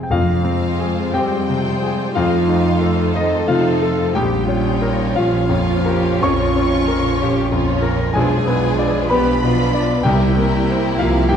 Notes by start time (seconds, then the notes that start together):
Already playing: C3 C4 G#4
0.03 G5
0.09 F2 F3 F4 F5
0.44 G#3 C4 F4 C5
0.80 G#4
1.13 F2 G3 C4 G4 G5
1.47 C3 G#3 C4 F4 C5
1.83 G#4
2.14 F2 F3 A3 D#4 F4 C5 F5
2.47 A3 D#4 F4 C5
2.81 A4
3.14 F2 D#3 D#4 A4 D#5
3.48 C3 F3 A3 D#4 F4 C5 F5
3.82 A4
4.14 A#1 G3 G4 G5
4.48 F3 C#4 F4 C#5
4.82 D#4 A#4
5.14 A#1 F3 C#4 F4 F5
5.49 F2 F3 C#4 F4 C#5
5.85 G4 A#4
6.22 A#1 F2 C#4 F4 C#5 C#6
6.56 F3 C#4 F4 C#5
6.88 A#4
7.19 A#1 C#4 G4
7.50 F2 F3 C#4 F4 C#5
7.81 A#4
8.13 B1 F3 G#3 D4 F4 G#4 B4 G#5
8.45 F3 B3 D4 F4 B4
8.79 D5
9.10 B1 B3 G4 B4 B5
9.41 B2 F3 D4 F4 B4
9.72 D4 D5
10.03 C2 C3 G3 C4 E4 G4 A#4 G5
10.36 G3 A#3 C4 E4 A#4
10.71 C5
10.99 C2 F3 A#3 F4 F5
11.29 G2 G3 C4 E4 G4 A#4 G5